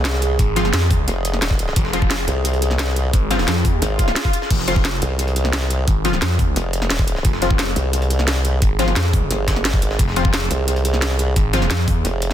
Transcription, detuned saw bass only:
0.39 0.72 G#1 loud
0.73 1.06 F2 loud
1.76 2.26 F1 medium
3.13 3.46 G#1 medium
3.48 3.81 F2 loud
4.51 5.01 F1 loud
5.88 6.21 G#1 loud
6.22 6.55 F2 loud
7.25 7.75 F1 loud
8.62 8.95 G#1 loud
8.96 9.29 F2 loud
9.99 10.49 F1 loud
11.36 11.69 G#1 loud
11.71 12.03 F2 loud

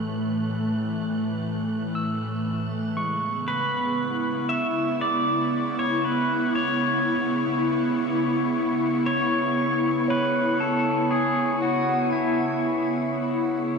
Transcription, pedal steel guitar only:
3.48 4.49 B4 medium
4.49 5.01 E5 medium
5.01 5.79 D5 loud
5.79 6.04 C#5 medium
6.05 6.55 B4 medium
6.55 8.02 C#5 medium
9.06 10.10 C#5 medium
10.10 10.62 B4 medium
10.60 11.12 A4 medium
11.11 11.63 G#4 medium
11.62 12.09 F#4 medium
12.12 13.79 E4 medium

